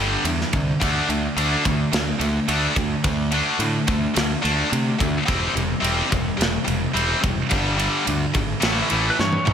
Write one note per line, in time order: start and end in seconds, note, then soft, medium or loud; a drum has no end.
0.00 0.15 G1 medium
0.00 0.24 G2 medium
0.00 0.24 D3 loud
0.00 0.25 G3 loud
0.24 0.42 E2 medium
0.24 0.51 G2 medium
0.24 0.51 D3 medium
0.24 ride medium
0.41 snare soft
0.53 0.71 C2 loud
0.53 0.79 G2 medium
0.53 0.79 D3 medium
0.53 kick medium
0.53 ride medium
0.80 0.99 D2 medium
0.80 1.07 D3 medium
0.80 1.08 A3 medium
0.80 1.08 D4 medium
0.80 kick loud
0.80 ride medium
1.09 1.27 D2 medium
1.09 1.35 D3 medium
1.09 1.35 A3 medium
1.09 ride medium
1.36 1.55 D2 medium
1.36 1.63 D3 medium
1.36 1.64 A3 medium
1.36 1.64 D4 medium
1.36 ride medium
1.64 1.83 D2 medium
1.64 1.90 D3 medium
1.64 1.91 A3 medium
1.64 kick medium
1.64 ride medium
1.93 2.11 D2 medium
1.93 2.18 D3 medium
1.93 2.18 A3 medium
1.93 snare loud
1.93 ride medium
2.20 2.38 D2 medium
2.20 2.46 D3 medium
2.20 2.46 A3 medium
2.20 ride medium
2.48 2.66 D2 medium
2.48 2.75 D3 medium
2.48 2.75 A3 medium
2.48 2.75 D4 medium
2.48 ride medium
2.76 2.94 D2 medium
2.76 3.02 D3 medium
2.76 3.02 A3 medium
2.76 kick medium
2.76 ride medium
3.04 3.40 D2 loud
3.04 3.30 D3 medium
3.04 3.30 A3 medium
3.04 kick loud
3.04 ride medium
3.31 3.58 D3 medium
3.31 3.59 A3 medium
3.31 3.59 D4 loud
3.31 ride medium
3.59 3.77 A2 medium
3.59 3.86 D3 medium
3.59 3.86 A3 medium
3.59 ride medium
3.87 4.06 D2 medium
3.87 4.13 D3 medium
3.87 4.13 A3 medium
3.87 kick medium
3.87 ride medium
4.14 4.34 D2 medium
4.14 4.40 D3 medium
4.14 4.41 A3 medium
4.14 snare medium
4.14 ride medium
4.42 4.62 D2 medium
4.42 4.68 D3 medium
4.42 4.68 A3 medium
4.42 4.70 D4 loud
4.42 ride medium
4.70 4.90 C3 medium
4.70 4.96 D3 medium
4.70 4.96 A3 medium
4.70 ride medium
4.99 5.18 D2 medium
4.99 5.24 D3 medium
4.99 5.25 A3 medium
4.99 kick medium
4.99 ride medium
5.26 5.46 E1 medium
5.26 5.52 C3 medium
5.26 5.52 G3 medium
5.26 5.54 C4 medium
5.26 kick medium
5.26 ride medium
5.53 5.73 E1 medium
5.53 5.79 C3 medium
5.53 5.80 G3 medium
5.53 ride medium
5.80 6.01 E1 medium
5.80 6.08 C3 loud
5.80 6.09 G3 medium
5.80 6.09 C4 medium
5.84 ride medium
6.10 6.30 E1 medium
6.10 6.36 C3 medium
6.10 6.36 G3 medium
6.10 kick medium
6.10 ride medium
6.37 6.57 E1 medium
6.37 6.63 C3 medium
6.37 6.63 G3 medium
6.37 ride medium
6.42 snare loud
6.65 6.85 E1 medium
6.65 6.91 C3 medium
6.65 6.91 G3 medium
6.65 ride medium
6.94 7.13 E1 medium
6.94 7.20 C3 medium
6.94 7.21 G3 medium
6.94 7.21 C4 medium
6.94 ride medium
7.21 7.41 E1 medium
7.21 7.47 C3 medium
7.21 7.48 G3 medium
7.21 kick medium
7.21 ride medium
7.49 7.87 G1 medium
7.49 7.75 G2 medium
7.49 7.76 D3 medium
7.49 7.77 G3 medium
7.49 kick medium
7.49 ride medium
7.76 8.04 G2 medium
7.76 8.04 D3 loud
7.76 8.05 G3 loud
7.76 ride medium
8.05 8.25 D2 medium
8.05 8.31 G2 medium
8.05 8.31 D3 medium
8.05 ride medium
8.34 8.53 G#1 medium
8.34 8.59 G2 medium
8.34 8.60 D3 medium
8.34 kick medium
8.34 ride medium
8.60 8.81 A1 medium
8.60 8.88 A2 medium
8.60 8.88 E3 medium
8.60 8.88 A3 medium
8.60 snare loud
8.60 ride medium
8.89 9.09 A1 medium
8.89 9.16 A2 loud
8.89 9.16 E3 loud
8.89 9.17 A3 medium
8.89 ride medium
9.10 9.18 B4 medium
9.17 9.37 G2 medium
9.17 9.43 A2 medium
9.17 9.43 E3 medium
9.17 9.53 C#5 medium
9.17 snare medium
9.32 high tom medium
9.45 9.53 B1 loud
9.45 9.53 A2 medium
9.45 9.53 E3 medium
9.45 mid tom medium